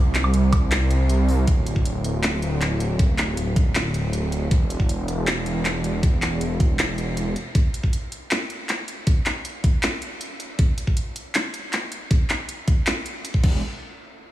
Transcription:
0.00 1.46 C2 medium
0.15 clap medium
0.15 closed hi-hat medium
0.24 high woodblock medium
0.34 closed hi-hat medium
0.53 kick loud
0.53 closed hi-hat medium
0.53 high woodblock medium
0.72 clap loud
0.72 closed hi-hat medium
0.91 closed hi-hat medium
1.09 closed hi-hat medium
1.28 open hi-hat medium
1.47 4.49 D1 medium
1.47 kick loud
1.47 closed hi-hat medium
1.66 closed hi-hat medium
1.76 kick medium
1.85 closed hi-hat medium
2.04 closed hi-hat medium
2.23 clap loud
2.23 closed hi-hat medium
2.42 closed hi-hat medium
2.61 clap medium
2.61 closed hi-hat medium
2.80 closed hi-hat medium
2.99 kick loud
2.99 closed hi-hat medium
3.18 clap medium
3.18 closed hi-hat medium
3.37 closed hi-hat medium
3.56 kick loud
3.56 closed hi-hat medium
3.75 clap loud
3.75 closed hi-hat medium
3.94 closed hi-hat medium
4.13 closed hi-hat medium
4.32 closed hi-hat medium
4.51 7.34 E1 medium
4.51 kick loud
4.51 closed hi-hat medium
4.70 closed hi-hat medium
4.80 kick medium
4.89 closed hi-hat medium
5.08 closed hi-hat medium
5.27 clap loud
5.27 closed hi-hat medium
5.46 closed hi-hat medium
5.65 clap medium
5.65 closed hi-hat medium
5.84 closed hi-hat medium
6.03 kick loud
6.03 closed hi-hat medium
6.22 clap medium
6.22 closed hi-hat medium
6.41 closed hi-hat medium
6.60 kick loud
6.60 closed hi-hat medium
6.79 clap loud
6.79 closed hi-hat medium
6.98 closed hi-hat medium
7.17 closed hi-hat medium
7.36 closed hi-hat medium
7.55 kick loud
7.55 closed hi-hat medium
7.74 closed hi-hat medium
7.84 kick medium
7.93 closed hi-hat medium
8.12 closed hi-hat medium
8.31 clap loud
8.31 closed hi-hat medium
8.50 closed hi-hat medium
8.69 clap medium
8.69 closed hi-hat medium
8.88 closed hi-hat medium
9.07 kick loud
9.07 closed hi-hat medium
9.26 clap medium
9.26 closed hi-hat medium
9.45 closed hi-hat medium
9.64 kick medium
9.64 closed hi-hat medium
9.83 clap loud
9.83 closed hi-hat medium
10.02 closed hi-hat medium
10.21 closed hi-hat medium
10.40 closed hi-hat medium
10.59 kick loud
10.59 closed hi-hat medium
10.78 closed hi-hat medium
10.87 kick medium
10.97 closed hi-hat medium
11.16 closed hi-hat medium
11.35 clap loud
11.35 closed hi-hat medium
11.54 closed hi-hat medium
11.73 clap medium
11.73 closed hi-hat medium
11.92 closed hi-hat medium
12.11 kick loud
12.11 closed hi-hat medium
12.30 clap medium
12.30 closed hi-hat medium
12.49 closed hi-hat medium
12.68 kick loud
12.68 closed hi-hat medium
12.87 clap loud
12.87 closed hi-hat medium
13.06 closed hi-hat medium
13.25 closed hi-hat medium
13.34 kick medium
13.44 13.61 E1 loud
13.44 kick loud
13.44 crash medium

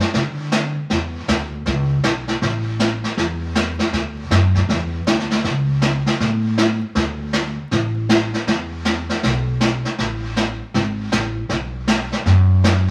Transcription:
0.00 snare soft
0.14 0.76 D3 medium
0.14 brush sweep medium
0.14 snare soft
0.52 snare medium
0.52 hi-hat pedal medium
0.90 1.21 E2 medium
0.90 brush sweep medium
0.90 snare soft
1.28 1.60 D2 medium
1.28 snare medium
1.28 hi-hat pedal medium
1.66 1.99 C#2 medium
1.66 brush sweep medium
1.66 snare soft
2.04 2.36 B1 medium
2.04 snare medium
2.04 hi-hat pedal medium
2.28 snare soft
2.42 3.02 A1 medium
2.42 brush sweep soft
2.42 snare soft
2.79 snare medium
2.79 hi-hat pedal medium
3.04 snare soft
3.18 3.78 E2 medium
3.18 brush sweep soft
3.18 snare soft
3.55 snare medium
3.55 hi-hat pedal medium
3.79 snare soft
3.92 4.23 D2 medium
3.92 brush sweep soft
3.92 snare soft
4.31 4.63 F#2 medium
4.31 snare medium
4.31 hi-hat pedal soft
4.55 kick soft
4.55 snare soft
4.69 5.01 E2 medium
4.69 brush sweep soft
4.69 snare soft
5.07 5.39 D2 medium
5.07 snare medium
5.07 hi-hat pedal medium
5.19 snare soft
5.30 snare soft
5.44 6.05 C#2 medium
5.44 brush sweep medium
5.44 snare soft
5.82 snare medium
5.82 hi-hat pedal medium
6.06 snare soft
6.20 6.81 A2 medium
6.20 brush sweep soft
6.20 snare soft
6.58 snare medium
6.58 hi-hat pedal soft
6.95 7.56 D2 medium
6.95 brush sweep medium
6.95 snare soft
7.33 snare medium
7.33 hi-hat pedal medium
7.71 8.32 A1 medium
7.71 brush sweep soft
7.71 snare soft
8.09 snare medium
8.09 hi-hat pedal medium
8.34 snare soft
8.47 9.08 E2 medium
8.47 brush sweep soft
8.47 snare soft
8.85 snare medium
8.85 hi-hat pedal medium
9.09 snare soft
9.23 9.84 B1 medium
9.23 brush sweep soft
9.23 snare soft
9.61 snare medium
9.61 hi-hat pedal medium
9.85 snare soft
9.98 10.59 A1 medium
9.98 brush sweep medium
9.98 snare soft
10.36 snare medium
10.36 hi-hat pedal soft
10.74 11.06 G#1 medium
10.74 brush sweep soft
10.74 snare soft
11.12 11.44 A1 medium
11.12 snare medium
11.12 hi-hat pedal medium
11.49 12.10 B1 medium
11.49 brush sweep medium
11.49 snare soft
11.87 snare medium
11.87 hi-hat pedal soft
12.12 snare soft
12.26 12.86 F#2 medium
12.26 brush sweep medium
12.26 snare soft
12.64 snare medium
12.64 hi-hat pedal medium

